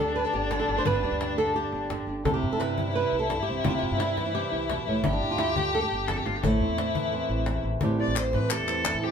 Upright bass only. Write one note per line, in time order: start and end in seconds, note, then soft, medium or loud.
0.00 0.24 D2 medium
0.33 0.63 G1 medium
0.68 0.83 G1 medium
0.85 1.00 G1 loud
1.03 1.11 D2 medium
1.12 1.63 D2 medium
1.72 2.02 G1 medium
2.07 2.22 G1 medium
2.25 2.40 C2 loud
2.43 2.50 G2 medium
2.51 3.03 G2 medium
3.12 3.42 C2 medium
3.47 3.62 C2 medium
3.65 3.80 C2 medium
3.82 3.90 G2 medium
3.91 4.42 G2 medium
4.52 4.81 C2 medium
4.87 5.01 C2 medium
5.05 5.19 G1 medium
5.23 5.29 D2 medium
5.31 5.82 D2 medium
5.92 6.21 G1 medium
6.26 6.41 G1 medium
6.43 6.58 A1 medium
6.60 6.67 E2 medium
6.69 7.20 E2 medium
7.29 7.59 A1 medium
7.64 7.79 A1 medium
7.81 8.03 A1 medium
8.07 8.35 A1 medium
8.33 8.56 A2 medium
8.60 8.89 E2 medium
8.94 9.09 A2 medium